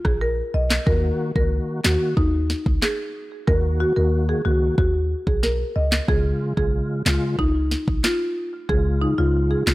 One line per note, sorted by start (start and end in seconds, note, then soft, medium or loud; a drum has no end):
0.05 0.42 A#1 medium
0.05 0.19 G#4 medium
0.05 kick loud
0.05 cross-stick medium
0.21 0.36 A#4 medium
0.54 0.79 B1 loud
0.54 0.68 D#5 medium
0.70 snare loud
0.70 clap medium
0.86 1.11 D#2 loud
0.86 1.32 D#3 medium
0.86 1.32 A#3 medium
0.86 1.32 F#4 medium
0.86 1.01 A#4 loud
0.86 kick loud
1.36 1.60 C#2 loud
1.36 1.81 D#3 medium
1.36 1.81 A#3 medium
1.36 1.81 F#4 medium
1.36 1.50 A#4 medium
1.36 kick medium
1.84 1.97 D#2 medium
1.84 2.15 D#3 medium
1.84 2.15 A#3 medium
1.84 1.98 F#4 medium
1.84 2.15 F#4 medium
1.84 snare loud
1.84 clap medium
2.17 2.54 D#2 medium
2.17 2.63 D#4 loud
2.17 kick loud
2.50 snare medium
2.66 2.78 C#2 medium
2.66 kick loud
2.82 3.28 G#4 medium
2.82 snare loud
2.82 clap medium
3.47 3.84 D#2 loud
3.47 3.93 D#3 medium
3.47 3.93 A#3 medium
3.47 3.93 F#4 loud
3.47 3.62 A#4 medium
3.47 kick loud
3.80 3.94 F#4 medium
3.96 4.33 D#2 medium
3.96 4.42 D#3 medium
3.96 4.42 A#3 medium
3.96 4.42 F#4 medium
3.96 4.11 A#4 medium
4.29 4.43 G#4 medium
4.45 4.70 C#2 medium
4.45 4.75 D#3 medium
4.45 4.75 A#3 medium
4.45 4.59 F#4 medium
4.45 4.76 F#4 medium
4.78 5.15 D#2 loud
4.78 4.92 F#4 medium
4.78 kick loud
5.27 5.64 B1 medium
5.27 5.41 G#4 medium
5.27 kick loud
5.43 5.57 A#4 medium
5.43 snare medium
5.76 6.00 C#2 medium
5.76 5.90 D#5 medium
5.92 snare loud
5.92 clap medium
6.08 6.33 C#2 loud
6.08 6.53 C#3 medium
6.08 6.53 G#3 medium
6.08 6.53 F4 loud
6.08 6.23 G#4 loud
6.08 kick loud
6.57 6.82 B1 medium
6.57 7.02 C#3 medium
6.57 7.02 G#3 medium
6.57 7.02 F4 medium
6.57 6.71 G#4 medium
6.57 kick medium
7.06 7.18 C#2 medium
7.06 7.36 C#3 medium
7.06 7.36 G#3 medium
7.06 7.20 F4 medium
7.06 7.36 F4 medium
7.06 snare loud
7.06 clap medium
7.39 7.76 C#2 loud
7.39 7.85 D#4 medium
7.39 kick medium
7.71 snare medium
7.88 8.00 B1 medium
7.88 kick loud
8.04 8.50 F4 medium
8.04 snare loud
8.04 clap medium
8.69 9.06 C#2 loud
8.69 9.14 C#3 medium
8.69 9.14 G#3 medium
8.69 9.14 F4 loud
8.69 8.83 G#4 medium
8.69 kick loud
9.02 9.16 D#4 medium
9.18 9.55 C#2 medium
9.18 9.63 C#3 medium
9.18 9.63 G#3 medium
9.18 9.32 F4 medium
9.18 9.63 F4 medium
9.51 9.65 G#4 medium
9.67 9.74 B1 loud
9.67 9.74 C#3 medium
9.67 9.74 G#3 medium
9.67 9.74 F4 medium
9.67 snare loud
9.67 clap medium